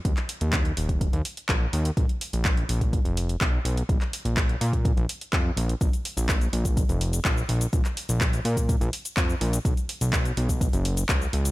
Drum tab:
HH |xxoxxxoxxxoxx-ox|xxoxxxoxxxoxx-ox|xxoxxxoxxxoxx-ox|xxoxxxoxxxoxx-ox|
SH |----------------|----------------|----------------|xx-xxx-xxx-xxx-x|
CP |-x--x-------x---|----x-------x---|-x--x-------x---|----x-------x---|
BD |o---o--oo---o---|o---o--oo---o---|o---o--oo---o---|o---o--oo---o---|

HH |xxoxxxoxxxoxx-ox|xxoxxxoxxxoxx-ox|
SH |xx-xxx-xxx-xxx-x|xx-xxx-xxx-xxx-x|
CP |-x--x-------x---|----x-------x---|
BD |o---o--oo---o---|o---o--oo---o---|